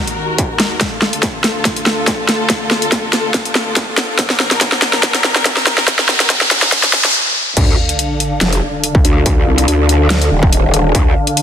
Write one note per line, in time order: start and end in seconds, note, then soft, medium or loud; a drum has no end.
0.00 0.79 D#2 medium
0.00 0.79 D#3 medium
0.00 0.79 F#4 medium
0.00 0.77 A#4 medium
0.07 closed hi-hat medium
0.38 kick loud
0.38 closed hi-hat medium
0.60 snare medium
0.60 closed hi-hat medium
0.81 4.15 D2 medium
0.81 4.15 D3 medium
0.81 4.15 F4 medium
0.81 4.15 A4 medium
0.81 kick loud
0.81 snare medium
0.81 closed hi-hat medium
0.81 riser medium
1.02 snare medium
1.13 closed hi-hat medium
1.23 kick medium
1.23 snare medium
1.23 closed hi-hat medium
1.44 snare medium
1.44 closed hi-hat medium
1.65 kick loud
1.65 snare medium
1.65 closed hi-hat medium
1.76 closed hi-hat medium
1.86 snare medium
2.07 kick loud
2.07 snare medium
2.07 closed hi-hat medium
2.29 snare medium
2.29 closed hi-hat medium
2.50 kick loud
2.50 snare medium
2.50 closed hi-hat medium
2.71 snare medium
2.82 closed hi-hat medium
2.92 kick loud
2.92 snare medium
2.92 closed hi-hat medium
3.13 snare medium
3.13 closed hi-hat medium
3.34 kick loud
3.34 snare medium
3.34 closed hi-hat medium
3.45 closed hi-hat medium
3.55 snare medium
3.76 kick loud
3.76 snare medium
3.76 closed hi-hat medium
3.98 snare medium
3.98 closed hi-hat soft
4.19 5.86 A#2 medium
4.19 5.86 F3 medium
4.19 5.86 D4 medium
4.19 7.12 A#4 medium
4.19 kick loud
4.19 snare medium
4.19 closed hi-hat medium
4.30 snare medium
4.40 snare medium
4.51 snare medium
4.51 closed hi-hat medium
4.61 kick loud
4.61 snare medium
4.61 closed hi-hat medium
4.72 snare medium
4.82 snare loud
4.82 closed hi-hat soft
4.93 snare medium
5.03 kick loud
5.03 snare loud
5.03 closed hi-hat medium
5.14 snare medium
5.14 closed hi-hat medium
5.24 snare loud
5.36 snare medium
5.45 kick loud
5.45 snare loud
5.45 closed hi-hat medium
5.57 snare medium
5.67 snare loud
5.67 closed hi-hat medium
5.78 snare medium
5.88 7.13 D#2 medium
5.88 7.13 D#3 medium
5.88 7.13 F#4 medium
5.88 kick loud
5.88 snare loud
5.88 closed hi-hat medium
5.99 snare medium
6.09 snare loud
6.20 snare medium
6.20 closed hi-hat medium
6.30 kick loud
6.30 snare loud
6.30 closed hi-hat medium
6.41 snare medium
6.51 snare loud
6.51 closed hi-hat medium
6.62 snare loud
6.72 kick loud
6.72 snare loud
6.72 closed hi-hat medium
6.83 snare loud
6.83 closed hi-hat medium
6.93 snare loud
7.05 snare medium
7.57 7.76 D2 medium
7.57 11.42 D3 medium
7.57 11.42 D4 medium
7.57 11.42 A4 medium
7.57 11.42 F5 medium
7.57 kick loud
7.57 closed hi-hat medium
7.57 crash loud
7.57 sub drop medium
7.89 closed hi-hat medium
7.99 closed hi-hat medium
8.20 closed hi-hat medium
8.41 8.61 F1 medium
8.41 snare loud
8.41 closed hi-hat medium
8.53 closed hi-hat medium
8.84 closed hi-hat medium
8.95 kick loud
9.05 9.24 D2 loud
9.05 closed hi-hat medium
9.26 9.45 D2 loud
9.26 kick loud
9.26 closed hi-hat medium
9.47 9.66 C2 loud
9.58 closed hi-hat medium
9.68 10.30 D2 loud
9.68 closed hi-hat medium
9.89 closed hi-hat medium
10.10 snare loud
10.10 closed hi-hat medium
10.22 closed hi-hat medium
10.31 10.62 D#1 loud
10.43 kick loud
10.53 closed hi-hat medium
10.64 10.93 D#1 loud
10.74 closed hi-hat medium
10.95 11.14 D2 loud
10.95 kick loud
10.95 closed hi-hat medium
11.27 closed hi-hat medium
11.37 closed hi-hat medium